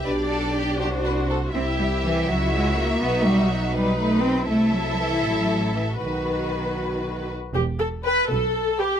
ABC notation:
X:1
M:6/8
L:1/8
Q:3/8=81
K:Clyd
V:1 name="Violin section"
d3 c3 | [K:Em] e6- | e3 B3 | e6 |
B4- B z | z2 g z2 g |]
V:2 name="Violin section"
B A G G B A | [K:Em] G3 F3 | F3 B3 | A6 |
B4- B z | z2 B z2 B |]
V:3 name="Viola section"
G3 F3 | [K:Em] E3 E3 | ^D3 D3 | E6 |
F4- F z | G A B A2 G |]
V:4 name="Cello section" clef=bass
D4- D z | [K:Em] C G, E, F, ^G, ^A, | B, G, F, G, A, C | A, F, E, F,2 E, |
^D,4- D, z | E,,3 B,,3 |]
V:5 name="Double bass section" clef=bass
B,,,3 C,,3 | [K:Em] C,,3 ^C,,3 | B,,,6 | C,,3 A,,,3 |
B,,,4- B,,, z | E,,,3 B,,,3 |]